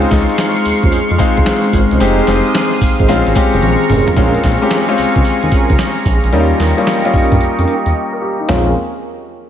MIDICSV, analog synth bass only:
0, 0, Header, 1, 2, 480
1, 0, Start_track
1, 0, Tempo, 540541
1, 1777, Time_signature, 4, 2, 24, 8
1, 8433, End_track
2, 0, Start_track
2, 0, Title_t, "Analog synth bass"
2, 0, Program_c, 0, 38
2, 101, Note_on_c, 0, 37, 100
2, 219, Note_off_c, 0, 37, 0
2, 582, Note_on_c, 0, 39, 50
2, 645, Note_off_c, 0, 39, 0
2, 741, Note_on_c, 0, 39, 86
2, 799, Note_off_c, 0, 39, 0
2, 824, Note_on_c, 0, 41, 52
2, 886, Note_off_c, 0, 41, 0
2, 982, Note_on_c, 0, 41, 85
2, 1039, Note_off_c, 0, 41, 0
2, 1219, Note_on_c, 0, 37, 99
2, 1278, Note_off_c, 0, 37, 0
2, 1538, Note_on_c, 0, 32, 92
2, 1657, Note_off_c, 0, 32, 0
2, 1702, Note_on_c, 0, 36, 88
2, 1759, Note_off_c, 0, 36, 0
2, 1781, Note_on_c, 0, 29, 121
2, 1958, Note_off_c, 0, 29, 0
2, 2020, Note_on_c, 0, 29, 90
2, 2138, Note_off_c, 0, 29, 0
2, 2500, Note_on_c, 0, 32, 45
2, 2564, Note_off_c, 0, 32, 0
2, 2660, Note_on_c, 0, 32, 83
2, 2718, Note_off_c, 0, 32, 0
2, 2741, Note_on_c, 0, 34, 113
2, 2859, Note_off_c, 0, 34, 0
2, 2902, Note_on_c, 0, 32, 90
2, 2959, Note_off_c, 0, 32, 0
2, 3141, Note_on_c, 0, 29, 98
2, 3199, Note_off_c, 0, 29, 0
2, 3223, Note_on_c, 0, 34, 101
2, 3340, Note_off_c, 0, 34, 0
2, 3461, Note_on_c, 0, 29, 112
2, 3579, Note_off_c, 0, 29, 0
2, 3700, Note_on_c, 0, 34, 105
2, 3877, Note_off_c, 0, 34, 0
2, 3941, Note_on_c, 0, 34, 99
2, 4059, Note_off_c, 0, 34, 0
2, 4424, Note_on_c, 0, 37, 49
2, 4486, Note_off_c, 0, 37, 0
2, 4581, Note_on_c, 0, 37, 87
2, 4639, Note_off_c, 0, 37, 0
2, 4662, Note_on_c, 0, 39, 48
2, 4725, Note_off_c, 0, 39, 0
2, 4821, Note_on_c, 0, 39, 91
2, 4878, Note_off_c, 0, 39, 0
2, 5062, Note_on_c, 0, 37, 92
2, 5119, Note_off_c, 0, 37, 0
2, 5378, Note_on_c, 0, 34, 109
2, 5497, Note_off_c, 0, 34, 0
2, 5541, Note_on_c, 0, 34, 84
2, 5599, Note_off_c, 0, 34, 0
2, 5617, Note_on_c, 0, 39, 125
2, 5795, Note_off_c, 0, 39, 0
2, 5857, Note_on_c, 0, 39, 91
2, 5977, Note_off_c, 0, 39, 0
2, 6338, Note_on_c, 0, 43, 47
2, 6402, Note_off_c, 0, 43, 0
2, 6500, Note_on_c, 0, 43, 76
2, 6558, Note_off_c, 0, 43, 0
2, 6576, Note_on_c, 0, 41, 49
2, 6640, Note_off_c, 0, 41, 0
2, 6736, Note_on_c, 0, 41, 90
2, 6795, Note_off_c, 0, 41, 0
2, 6980, Note_on_c, 0, 39, 85
2, 7038, Note_off_c, 0, 39, 0
2, 7538, Note_on_c, 0, 34, 101
2, 7761, Note_off_c, 0, 34, 0
2, 8433, End_track
0, 0, End_of_file